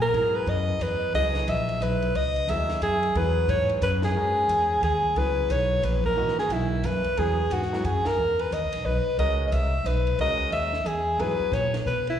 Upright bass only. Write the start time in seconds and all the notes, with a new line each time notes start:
Already playing: A#2
0.13 G#2
0.46 F#2
0.79 E2
1.13 C#2
1.47 A#1
1.80 B1
2.15 C#2
2.48 D#2
2.81 F#2
3.15 E2
3.48 G#2
3.81 F#2
4.15 G#2
4.48 E2
4.82 D#2
5.15 C#2
5.49 B1
5.83 A#1
6.16 G#1
6.49 B1
6.83 F#2
7.05 muted upright bass stroke
7.17 E2
7.50 G#2
7.84 F#2
8.06 muted upright bass stroke
8.18 E2
8.51 D#2
8.63 C#2
8.74 B1
8.85 B1
9.05 muted upright bass stroke
9.18 C#2
9.52 C2
9.85 B1
10.18 C#2
10.39 muted upright bass stroke
10.51 D#2
10.85 E2
11.18 G#2
11.39 muted upright bass stroke
11.52 A#2
11.73 muted upright bass stroke
11.86 B2